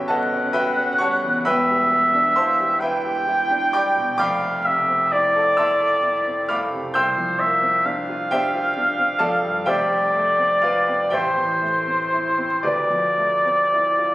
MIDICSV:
0, 0, Header, 1, 3, 480
1, 0, Start_track
1, 0, Tempo, 916031
1, 754, Time_signature, 6, 3, 24, 8
1, 5080, Tempo, 972447
1, 6040, Tempo, 1052632
1, 7183, End_track
2, 0, Start_track
2, 0, Title_t, "Oboe"
2, 0, Program_c, 0, 68
2, 44, Note_on_c, 0, 78, 97
2, 735, Note_off_c, 0, 78, 0
2, 759, Note_on_c, 0, 76, 99
2, 1465, Note_on_c, 0, 79, 105
2, 1472, Note_off_c, 0, 76, 0
2, 2192, Note_off_c, 0, 79, 0
2, 2195, Note_on_c, 0, 77, 95
2, 2439, Note_on_c, 0, 76, 90
2, 2446, Note_off_c, 0, 77, 0
2, 2683, Note_on_c, 0, 74, 105
2, 2690, Note_off_c, 0, 76, 0
2, 3506, Note_off_c, 0, 74, 0
2, 3639, Note_on_c, 0, 72, 81
2, 3875, Note_on_c, 0, 76, 86
2, 3883, Note_off_c, 0, 72, 0
2, 4116, Note_on_c, 0, 77, 88
2, 4124, Note_off_c, 0, 76, 0
2, 5073, Note_off_c, 0, 77, 0
2, 5077, Note_on_c, 0, 74, 90
2, 5795, Note_on_c, 0, 72, 68
2, 5802, Note_off_c, 0, 74, 0
2, 6504, Note_off_c, 0, 72, 0
2, 6507, Note_on_c, 0, 74, 71
2, 7183, Note_off_c, 0, 74, 0
2, 7183, End_track
3, 0, Start_track
3, 0, Title_t, "Grand piano"
3, 0, Program_c, 1, 0
3, 0, Control_c, 1, 64, 127
3, 0, Note_on_c, 1, 33, 68
3, 0, Note_on_c, 1, 55, 49
3, 0, Note_on_c, 1, 59, 56
3, 0, Note_on_c, 1, 61, 58
3, 0, Note_on_c, 1, 66, 61
3, 0, Note_on_c, 1, 67, 74
3, 0, Note_on_c, 1, 69, 73
3, 0, Note_on_c, 1, 73, 77
3, 0, Note_on_c, 1, 75, 75
3, 0, Note_on_c, 1, 76, 75
3, 0, Note_on_c, 1, 78, 76
3, 0, Note_on_c, 1, 79, 94
3, 0, Note_on_c, 1, 81, 100
3, 41, Note_off_c, 1, 81, 0
3, 41, Note_on_c, 1, 81, 103
3, 49, Note_off_c, 1, 75, 0
3, 49, Note_on_c, 1, 75, 76
3, 51, Note_off_c, 1, 78, 0
3, 51, Note_on_c, 1, 78, 77
3, 52, Note_off_c, 1, 59, 0
3, 52, Note_off_c, 1, 69, 0
3, 52, Note_on_c, 1, 59, 58
3, 52, Note_on_c, 1, 69, 72
3, 118, Note_off_c, 1, 61, 0
3, 172, Note_on_c, 1, 61, 62
3, 239, Note_off_c, 1, 59, 0
3, 268, Note_off_c, 1, 75, 0
3, 270, Note_off_c, 1, 69, 0
3, 270, Note_off_c, 1, 78, 0
3, 278, Note_off_c, 1, 76, 0
3, 278, Note_on_c, 1, 76, 82
3, 279, Note_on_c, 1, 83, 102
3, 280, Note_off_c, 1, 66, 0
3, 280, Note_on_c, 1, 66, 64
3, 280, Note_on_c, 1, 71, 75
3, 281, Note_off_c, 1, 81, 0
3, 284, Note_off_c, 1, 79, 0
3, 284, Note_on_c, 1, 79, 81
3, 357, Note_off_c, 1, 61, 0
3, 406, Note_on_c, 1, 61, 61
3, 470, Note_off_c, 1, 66, 0
3, 500, Note_off_c, 1, 76, 0
3, 501, Note_off_c, 1, 71, 0
3, 503, Note_off_c, 1, 79, 0
3, 516, Note_on_c, 1, 85, 107
3, 517, Note_off_c, 1, 83, 0
3, 525, Note_off_c, 1, 73, 0
3, 525, Note_on_c, 1, 73, 77
3, 525, Note_on_c, 1, 78, 84
3, 526, Note_off_c, 1, 55, 0
3, 526, Note_on_c, 1, 55, 62
3, 526, Note_on_c, 1, 81, 80
3, 592, Note_off_c, 1, 61, 0
3, 653, Note_on_c, 1, 40, 57
3, 711, Note_off_c, 1, 55, 0
3, 732, Note_off_c, 1, 33, 0
3, 742, Note_off_c, 1, 73, 0
3, 742, Note_off_c, 1, 78, 0
3, 742, Note_off_c, 1, 81, 0
3, 753, Note_off_c, 1, 85, 0
3, 758, Note_off_c, 1, 40, 0
3, 759, Note_on_c, 1, 83, 108
3, 762, Note_on_c, 1, 28, 72
3, 763, Control_c, 1, 64, 0
3, 765, Note_on_c, 1, 76, 83
3, 765, Note_on_c, 1, 79, 82
3, 766, Note_on_c, 1, 40, 79
3, 767, Note_off_c, 1, 67, 0
3, 767, Note_on_c, 1, 71, 88
3, 849, Control_c, 1, 64, 127
3, 891, Note_on_c, 1, 55, 59
3, 999, Note_on_c, 1, 59, 67
3, 1073, Note_off_c, 1, 55, 0
3, 1125, Note_on_c, 1, 62, 62
3, 1187, Note_off_c, 1, 59, 0
3, 1215, Note_off_c, 1, 76, 0
3, 1215, Note_off_c, 1, 79, 0
3, 1216, Note_off_c, 1, 71, 0
3, 1233, Note_off_c, 1, 83, 0
3, 1236, Note_on_c, 1, 84, 117
3, 1241, Note_on_c, 1, 72, 87
3, 1241, Note_on_c, 1, 81, 85
3, 1246, Note_on_c, 1, 77, 81
3, 1247, Note_on_c, 1, 64, 64
3, 1309, Note_off_c, 1, 62, 0
3, 1360, Note_on_c, 1, 67, 66
3, 1430, Note_off_c, 1, 64, 0
3, 1459, Note_off_c, 1, 72, 0
3, 1459, Note_off_c, 1, 81, 0
3, 1462, Note_off_c, 1, 77, 0
3, 1470, Note_on_c, 1, 83, 89
3, 1473, Note_off_c, 1, 84, 0
3, 1477, Note_on_c, 1, 76, 76
3, 1478, Note_on_c, 1, 71, 73
3, 1478, Note_on_c, 1, 79, 77
3, 1479, Note_on_c, 1, 64, 67
3, 1548, Note_off_c, 1, 67, 0
3, 1598, Note_on_c, 1, 67, 65
3, 1668, Note_off_c, 1, 64, 0
3, 1713, Note_on_c, 1, 64, 66
3, 1788, Note_off_c, 1, 67, 0
3, 1838, Note_on_c, 1, 62, 64
3, 1907, Note_off_c, 1, 64, 0
3, 1937, Note_off_c, 1, 76, 0
3, 1938, Note_off_c, 1, 71, 0
3, 1938, Note_off_c, 1, 79, 0
3, 1952, Note_off_c, 1, 83, 0
3, 1956, Note_on_c, 1, 86, 113
3, 1957, Note_on_c, 1, 74, 90
3, 1959, Note_on_c, 1, 55, 63
3, 1959, Note_on_c, 1, 79, 90
3, 1960, Note_on_c, 1, 83, 86
3, 2031, Note_off_c, 1, 62, 0
3, 2078, Note_on_c, 1, 47, 63
3, 2152, Note_off_c, 1, 55, 0
3, 2181, Note_off_c, 1, 86, 0
3, 2182, Note_off_c, 1, 28, 0
3, 2183, Note_off_c, 1, 74, 0
3, 2184, Note_off_c, 1, 40, 0
3, 2184, Note_off_c, 1, 79, 0
3, 2184, Note_off_c, 1, 83, 0
3, 2189, Note_on_c, 1, 86, 123
3, 2195, Note_on_c, 1, 29, 80
3, 2197, Note_on_c, 1, 83, 104
3, 2198, Note_on_c, 1, 74, 98
3, 2199, Note_off_c, 1, 47, 0
3, 2199, Note_on_c, 1, 79, 100
3, 2201, Note_on_c, 1, 41, 80
3, 2208, Control_c, 1, 64, 0
3, 2299, Control_c, 1, 64, 127
3, 2324, Note_on_c, 1, 57, 61
3, 2444, Note_on_c, 1, 48, 64
3, 2515, Note_off_c, 1, 57, 0
3, 2563, Note_on_c, 1, 60, 62
3, 2636, Note_off_c, 1, 48, 0
3, 2685, Note_on_c, 1, 64, 71
3, 2756, Note_off_c, 1, 60, 0
3, 2808, Note_on_c, 1, 69, 70
3, 2878, Note_off_c, 1, 64, 0
3, 2903, Note_off_c, 1, 74, 0
3, 2903, Note_off_c, 1, 83, 0
3, 2904, Note_off_c, 1, 79, 0
3, 2918, Note_on_c, 1, 88, 100
3, 2920, Note_off_c, 1, 86, 0
3, 2924, Note_on_c, 1, 81, 80
3, 2927, Note_on_c, 1, 64, 72
3, 2927, Note_on_c, 1, 76, 75
3, 2927, Note_on_c, 1, 84, 80
3, 2999, Note_off_c, 1, 69, 0
3, 3044, Note_on_c, 1, 69, 66
3, 3119, Note_off_c, 1, 64, 0
3, 3160, Note_on_c, 1, 64, 71
3, 3238, Note_off_c, 1, 69, 0
3, 3284, Note_on_c, 1, 60, 64
3, 3356, Note_off_c, 1, 64, 0
3, 3386, Note_off_c, 1, 81, 0
3, 3387, Note_off_c, 1, 76, 0
3, 3387, Note_off_c, 1, 84, 0
3, 3399, Note_on_c, 1, 89, 111
3, 3402, Note_on_c, 1, 83, 91
3, 3404, Note_off_c, 1, 88, 0
3, 3404, Note_on_c, 1, 77, 88
3, 3404, Note_on_c, 1, 86, 91
3, 3407, Note_on_c, 1, 57, 67
3, 3478, Note_off_c, 1, 60, 0
3, 3525, Note_on_c, 1, 48, 57
3, 3599, Note_off_c, 1, 57, 0
3, 3624, Note_off_c, 1, 29, 0
3, 3627, Note_off_c, 1, 41, 0
3, 3627, Note_off_c, 1, 83, 0
3, 3628, Note_off_c, 1, 77, 0
3, 3628, Note_off_c, 1, 86, 0
3, 3636, Note_on_c, 1, 91, 112
3, 3641, Note_on_c, 1, 84, 85
3, 3642, Note_off_c, 1, 89, 0
3, 3642, Note_on_c, 1, 88, 88
3, 3644, Note_on_c, 1, 79, 86
3, 3645, Note_off_c, 1, 48, 0
3, 3646, Note_on_c, 1, 36, 75
3, 3654, Control_c, 1, 64, 0
3, 3739, Control_c, 1, 64, 127
3, 3759, Note_on_c, 1, 53, 60
3, 3882, Note_on_c, 1, 58, 65
3, 3952, Note_off_c, 1, 53, 0
3, 3994, Note_on_c, 1, 60, 63
3, 4074, Note_off_c, 1, 58, 0
3, 4099, Note_off_c, 1, 84, 0
3, 4099, Note_off_c, 1, 88, 0
3, 4100, Note_off_c, 1, 79, 0
3, 4116, Note_on_c, 1, 62, 63
3, 4117, Note_off_c, 1, 91, 0
3, 4189, Note_off_c, 1, 60, 0
3, 4241, Note_on_c, 1, 65, 65
3, 4310, Note_off_c, 1, 62, 0
3, 4354, Note_on_c, 1, 79, 117
3, 4359, Note_on_c, 1, 72, 85
3, 4359, Note_on_c, 1, 76, 82
3, 4361, Note_on_c, 1, 67, 80
3, 4363, Note_on_c, 1, 62, 64
3, 4432, Note_off_c, 1, 65, 0
3, 4477, Note_on_c, 1, 65, 62
3, 4553, Note_off_c, 1, 62, 0
3, 4598, Note_on_c, 1, 62, 60
3, 4669, Note_off_c, 1, 65, 0
3, 4708, Note_on_c, 1, 60, 57
3, 4789, Note_off_c, 1, 62, 0
3, 4815, Note_on_c, 1, 81, 116
3, 4816, Note_off_c, 1, 72, 0
3, 4816, Note_off_c, 1, 76, 0
3, 4817, Note_off_c, 1, 67, 0
3, 4818, Note_on_c, 1, 74, 81
3, 4820, Note_on_c, 1, 77, 83
3, 4821, Note_on_c, 1, 53, 61
3, 4822, Note_on_c, 1, 69, 85
3, 4835, Note_off_c, 1, 79, 0
3, 4905, Note_off_c, 1, 60, 0
3, 4942, Note_on_c, 1, 43, 55
3, 5024, Note_off_c, 1, 53, 0
3, 5054, Note_off_c, 1, 74, 0
3, 5055, Note_off_c, 1, 69, 0
3, 5055, Note_off_c, 1, 77, 0
3, 5060, Note_off_c, 1, 36, 0
3, 5060, Note_on_c, 1, 79, 110
3, 5064, Note_on_c, 1, 29, 70
3, 5065, Note_on_c, 1, 72, 89
3, 5065, Note_on_c, 1, 76, 80
3, 5067, Note_on_c, 1, 67, 88
3, 5069, Note_off_c, 1, 81, 0
3, 5070, Note_on_c, 1, 41, 72
3, 5073, Note_off_c, 1, 43, 0
3, 5088, Control_c, 1, 64, 0
3, 5183, Control_c, 1, 64, 127
3, 5183, Note_on_c, 1, 55, 56
3, 5311, Note_on_c, 1, 57, 56
3, 5379, Note_off_c, 1, 55, 0
3, 5421, Note_on_c, 1, 60, 54
3, 5503, Note_off_c, 1, 57, 0
3, 5525, Note_off_c, 1, 72, 0
3, 5526, Note_off_c, 1, 67, 0
3, 5526, Note_off_c, 1, 76, 0
3, 5535, Note_on_c, 1, 77, 96
3, 5542, Note_on_c, 1, 71, 77
3, 5543, Note_off_c, 1, 79, 0
3, 5543, Note_on_c, 1, 65, 71
3, 5544, Note_on_c, 1, 74, 74
3, 5619, Note_off_c, 1, 60, 0
3, 5667, Note_on_c, 1, 60, 55
3, 5767, Note_off_c, 1, 29, 0
3, 5770, Note_off_c, 1, 41, 0
3, 5772, Note_off_c, 1, 71, 0
3, 5773, Note_off_c, 1, 65, 0
3, 5773, Note_off_c, 1, 74, 0
3, 5775, Note_on_c, 1, 79, 101
3, 5780, Note_on_c, 1, 67, 72
3, 5782, Note_on_c, 1, 76, 70
3, 5783, Note_on_c, 1, 72, 79
3, 5785, Note_on_c, 1, 33, 66
3, 5786, Note_off_c, 1, 77, 0
3, 5792, Note_off_c, 1, 60, 0
3, 5804, Control_c, 1, 64, 0
3, 5888, Control_c, 1, 64, 127
3, 5909, Note_on_c, 1, 52, 51
3, 6028, Note_on_c, 1, 57, 54
3, 6106, Note_off_c, 1, 52, 0
3, 6142, Note_on_c, 1, 60, 49
3, 6219, Note_off_c, 1, 57, 0
3, 6261, Note_on_c, 1, 64, 50
3, 6335, Note_off_c, 1, 60, 0
3, 6376, Note_on_c, 1, 60, 57
3, 6456, Note_off_c, 1, 64, 0
3, 6485, Note_off_c, 1, 67, 0
3, 6486, Note_off_c, 1, 72, 0
3, 6486, Note_off_c, 1, 76, 0
3, 6487, Note_off_c, 1, 33, 0
3, 6491, Note_on_c, 1, 74, 78
3, 6493, Note_on_c, 1, 67, 62
3, 6496, Note_on_c, 1, 38, 60
3, 6497, Note_on_c, 1, 71, 57
3, 6501, Note_off_c, 1, 79, 0
3, 6503, Note_off_c, 1, 60, 0
3, 6518, Control_c, 1, 64, 0
3, 6605, Control_c, 1, 64, 127
3, 6616, Note_on_c, 1, 53, 43
3, 6739, Note_on_c, 1, 57, 49
3, 6820, Note_off_c, 1, 53, 0
3, 6866, Note_on_c, 1, 60, 50
3, 6943, Note_off_c, 1, 57, 0
3, 6994, Note_on_c, 1, 64, 54
3, 7067, Note_off_c, 1, 60, 0
3, 7109, Note_on_c, 1, 65, 52
3, 7183, Note_off_c, 1, 38, 0
3, 7183, Note_off_c, 1, 64, 0
3, 7183, Note_off_c, 1, 65, 0
3, 7183, Note_off_c, 1, 67, 0
3, 7183, Note_off_c, 1, 71, 0
3, 7183, Note_off_c, 1, 74, 0
3, 7183, End_track
0, 0, End_of_file